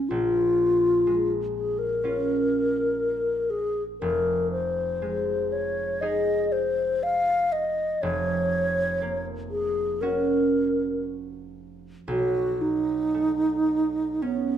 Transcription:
Already playing: harp G#3 C#4 F4, alto flute C#4
0.09 harp A#1, alto flute F4
1.07 harp G#3
1.54 alto flute G#4
1.78 alto flute A#4
2.04 harp C#4 F4
3.50 alto flute G#4
4.00 harp F1, alto flute A#4
4.52 alto flute C5
5.02 harp G#3
5.52 alto flute C#5
6.01 harp D#4 G#4, alto flute D#5
6.52 alto flute C5
7.03 alto flute F5
7.52 alto flute D#5
8.02 harp F1, alto flute C#5
9.02 harp A#3
9.50 alto flute G#4
10.01 harp C#4 F#4, alto flute A#4
12.08 harp B1, alto flute F#4
12.61 alto flute D#4
13.14 harp A3
14.22 alto flute B3, harp C#4

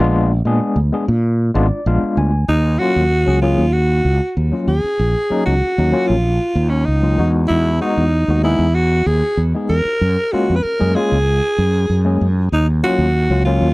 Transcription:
Already playing: tine electric piano G#3
0.00 fretless electric bass A#1, tine electric piano B3 D4 F4
0.45 fretless electric bass A#2, tine electric piano G#3 B3 D4 G#4
0.76 fretless electric bass D2
0.93 tine electric piano G#3 B3 D4 G#4
1.08 fretless electric bass A#2, tine electric piano F4
1.54 fretless electric bass G#1, tine electric piano G#3 B3 D4 F4 D5
1.72 tine electric piano D4 F4
1.86 fretless electric bass A#1, tine electric piano G#3 B3 D4 F4 F5
2.03 muted fretless electric bass stroke
2.17 fretless electric bass D2, tine electric piano G#5
2.48 fretless electric bass D#2, alto saxophone D#4
2.79 tine electric piano F#3 A#3 C#4 F4, alto saxophone F#4
2.96 fretless electric bass D#2
3.11 tine electric piano C#4 D#4
3.26 fretless electric bass C#2, tine electric piano F#3 A#3 C#4 G#4
3.42 tine electric piano F#3 A#3 C#4 G#4, alto saxophone F4
3.58 fretless electric bass D#2
3.73 tine electric piano C#4 G#4, alto saxophone F#4
4.05 fretless electric bass C#2
4.37 fretless electric bass D#2
4.52 tine electric piano F#3 A#3 C#4 F4
4.68 fretless electric bass D#2, alto saxophone G#4
4.84 tine electric piano C#4 F#4, muted fretless electric bass stroke
4.99 fretless electric bass A#1
5.30 tine electric piano F#3 A#3 C#4 D#4, muted fretless electric bass stroke
5.46 fretless electric bass C#2, alto saxophone F#4
5.63 tine electric piano F4, muted fretless electric bass stroke
5.78 fretless electric bass D#2, tine electric piano F#3 A#3 C#4 D#4
5.92 tine electric piano F#3 A#3 C#4 F4
6.07 fretless electric bass A#1, alto saxophone F4
6.24 tine electric piano C#4 F4
6.55 fretless electric bass D#2
6.70 alto saxophone C#4
6.85 fretless electric bass C#2, alto saxophone D#4
7.02 tine electric piano F#3 A#3 C#4 F4
7.18 fretless electric bass E2, tine electric piano G#3 B3 D#4 F#4
7.48 fretless electric bass E2, alto saxophone E4
7.80 tine electric piano G#3 B3 D#4 F#4, alto saxophone D#4
7.97 fretless electric bass E2
8.28 fretless electric bass D#2, tine electric piano G#3 B3 D#4 F#4
8.44 tine electric piano G#3 B3 D#4 G#4, alto saxophone E4
8.59 fretless electric bass E2
8.75 tine electric piano D#4 F#4, alto saxophone F#4
9.06 fretless electric bass D#2, alto saxophone G#4
9.37 fretless electric bass E2
9.54 tine electric piano G#3 B3 D#4 G#4
9.69 fretless electric bass E2, alto saxophone A#4
9.85 tine electric piano D#4 F#4, muted fretless electric bass stroke
10.01 fretless electric bass F#2
10.32 tine electric piano G#3 A#3 C#4 F4, alto saxophone F#4, muted fretless electric bass stroke
10.50 fretless electric bass F2
10.56 alto saxophone B4
10.63 tine electric piano C#4 G#4, alto saxophone A#4, muted fretless electric bass stroke
10.79 fretless electric bass F#2, tine electric piano G#3 A#3 C#4 G#4
10.95 tine electric piano G#3 A#3 C#4 F4, alto saxophone G#4
11.12 fretless electric bass C#2
11.28 tine electric piano G#4
11.58 fretless electric bass F#2
11.90 fretless electric bass F#2
12.05 tine electric piano G#3 A#3 C#4 G#4
12.21 fretless electric bass F#2
12.36 tine electric piano C#4 F4
12.52 fretless electric bass D#2, alto saxophone D#4
12.83 tine electric piano F#3 A#3 C#4 F4, alto saxophone F#4
12.98 fretless electric bass D#2
13.16 tine electric piano F4
13.30 fretless electric bass C#2, tine electric piano F#3 A#3 C#4 F4
13.45 tine electric piano F#3 A#3 C#4 F4, alto saxophone F4
13.62 fretless electric bass D#2

